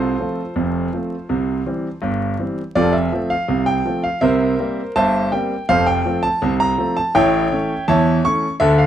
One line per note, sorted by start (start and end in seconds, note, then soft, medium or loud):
0.00 0.14 C2 medium
0.00 0.14 C3 medium
0.00 2.00 F4 medium
0.00 2.00 A4 medium
0.00 1.99 C5 medium
0.20 0.40 F3 soft
0.20 0.40 A3 soft
0.20 0.40 C4 medium
0.56 0.87 F1 medium
0.56 0.87 F2 medium
0.93 1.13 F3 soft
0.93 1.13 A3 soft
0.93 1.14 C4 soft
1.29 1.60 C2 medium
1.29 1.60 C3 medium
1.66 1.86 E3 soft
1.66 1.86 G3 soft
1.66 1.87 C4 medium
2.02 2.33 G1 medium
2.02 2.33 G2 medium
2.39 2.60 E3 soft
2.39 2.60 G3 medium
2.39 2.60 C4 medium
2.75 3.07 F1 medium
2.75 3.07 F2 medium
2.75 2.93 F4 medium
2.75 2.93 A4 medium
2.75 2.94 D5 loud
2.93 3.28 E5 medium
3.12 3.32 F3 medium
3.12 3.33 A3 medium
3.12 3.33 C4 medium
3.30 3.65 F5 medium
3.48 3.80 C2 medium
3.48 3.80 C3 medium
3.66 4.01 G5 loud
3.85 4.06 F3 medium
3.85 4.06 A3 soft
3.85 4.06 C4 medium
4.04 4.22 F5 medium
4.21 4.53 C2 medium
4.21 4.53 C3 medium
4.21 4.92 A#4 medium
4.21 4.92 C5 medium
4.21 4.80 E5 loud
4.59 4.79 G3 medium
4.59 4.80 A#3 medium
4.59 4.80 C4 medium
4.96 5.27 G1 medium
4.96 5.27 G2 medium
4.96 5.30 C5 medium
4.96 5.30 E5 medium
4.96 5.30 A5 loud
5.32 5.52 G3 medium
5.32 5.53 A#3 medium
5.32 5.53 C4 medium
5.32 5.67 G5 medium
5.69 6.00 F1 medium
5.69 6.00 F2 loud
5.69 5.86 A4 medium
5.69 5.86 C5 medium
5.69 5.87 F5 loud
5.87 6.21 G5 loud
6.05 6.25 F3 medium
6.05 6.26 A3 medium
6.05 6.26 C4 medium
6.23 6.52 A5 loud
6.42 6.73 C2 medium
6.42 6.73 C3 medium
6.60 6.94 A#5 loud
6.78 6.98 F3 medium
6.78 6.98 A3 medium
6.78 6.98 C4 medium
6.97 7.15 A5 loud
7.15 7.46 A1 loud
7.15 7.46 A2 loud
7.15 7.84 C#5 medium
7.15 7.84 E5 loud
7.15 7.84 G5 loud
7.51 7.71 E3 medium
7.51 7.72 A3 medium
7.51 7.72 C#4 medium
7.88 8.19 E2 loud
7.88 8.19 E3 medium
7.88 8.22 C#5 medium
7.88 8.22 E5 medium
7.88 8.17 A5 loud
8.25 8.45 E3 medium
8.25 8.45 A3 medium
8.25 8.45 C#4 medium
8.25 8.53 C#6 loud
8.60 8.87 D2 medium
8.60 8.87 D3 loud
8.60 8.78 A4 medium
8.60 8.78 E5 loud
8.78 8.87 F5 medium